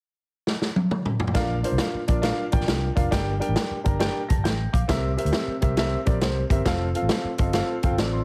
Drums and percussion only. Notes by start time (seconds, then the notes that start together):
0.47 snare
0.62 snare
0.76 high tom
0.91 mid tom
1.06 mid tom
1.20 floor tom
1.27 floor tom
1.35 kick, snare, closed hi-hat
1.64 closed hi-hat
1.78 snare, closed hi-hat
2.08 kick, closed hi-hat
2.23 snare, closed hi-hat
2.52 kick, closed hi-hat
2.60 snare
2.68 snare, closed hi-hat
2.97 kick, closed hi-hat
3.12 kick, snare, closed hi-hat
3.42 closed hi-hat
3.56 snare, closed hi-hat
3.85 kick, closed hi-hat
4.00 snare, closed hi-hat
4.30 kick, closed hi-hat
4.45 snare, closed hi-hat
4.74 kick, closed hi-hat
4.89 kick, snare, closed hi-hat
5.18 closed hi-hat
5.26 closed hi-hat
5.33 snare, closed hi-hat
5.62 kick, closed hi-hat
5.77 snare, closed hi-hat
6.06 kick, closed hi-hat
6.21 snare, closed hi-hat
6.50 kick, closed hi-hat
6.66 kick, snare, closed hi-hat
6.95 closed hi-hat
7.09 snare, closed hi-hat
7.38 kick, closed hi-hat
7.53 snare, closed hi-hat
7.83 kick, closed hi-hat
7.98 snare, closed hi-hat